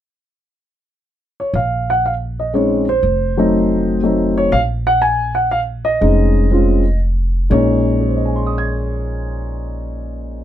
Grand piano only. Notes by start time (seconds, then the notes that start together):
1.40 C#5
1.55 F5
1.90 F#5
2.06 F5
2.40 D#5
2.54 G#3 C4 C#4 D#4 C#5
2.89 C5
3.37 F#3 A3 C4 D#4
4.03 F#3 A3 C4 D#4
4.38 C#5
4.52 F5
4.87 F#5
5.02 G#5
5.35 F#5
5.51 F5
5.85 D#5
6.01 G#3 C4 C#4 D#4
6.51 G#3 C4 C#4 F4
7.50 A#2 G#3 A#3 C#4 D#4 C#5
8.01 G#4
8.08 C5
8.16 D#5
8.25 G#5
8.36 C6
8.46 D#6
8.58 G#6